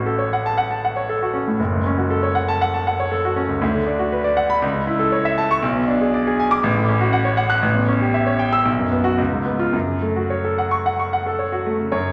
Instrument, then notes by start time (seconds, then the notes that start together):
grand piano
Already playing: A1 A2 C#4 F#4
0.06 A4
0.19 C#5
0.33 F#5
0.46 A5
0.58 F#5
0.71 A5
0.85 F#5
0.96 C#5
1.09 A4
1.22 F#4
1.33 C#4
1.47 A2
1.60 F#1
1.72 C#2
1.86 C#4
1.98 F#4
2.10 A4
2.23 C#5
2.35 F#5
2.48 A5
2.61 F#5
2.74 A5
2.87 F#5
3.00 C#5
3.12 A4
3.25 F#4
3.36 C#4
3.49 C#2
3.62 D2
3.75 D3
3.86 D4
3.99 F#4
4.12 B4
4.24 D5
4.37 F#5
4.50 B5
4.62 C#2
4.75 C#3
4.87 E4
4.99 A4
5.12 C#5
5.25 E5
5.38 A5
5.51 C#6
5.62 B1
5.75 B2
5.88 D4
6.01 G#4
6.14 D5
6.27 G#4
6.40 G#5
6.51 D6
6.63 A1
6.77 A2
6.88 C#4
7.01 F#4
7.13 F#5
7.25 C#5
7.37 F#5
7.50 F#6
7.62 A1
7.75 E2
7.88 C#4
8.01 G4
8.14 E5
8.27 C#5
8.39 G5
8.53 E6
8.65 B1
8.79 F#2
8.92 B3
9.04 F#4
9.18 C#2
9.32 G#2
9.45 B3
9.59 F4
9.73 F#2
9.88 C#3
10.02 A3
10.16 F#4
10.30 C#5
10.45 A4
10.58 F#5
10.71 C#6
10.86 F#5
10.99 C#6
11.13 F#5
11.26 A4
11.39 C#5
11.52 F#4
11.66 A3
11.80 C#3
11.92 F#2 C#5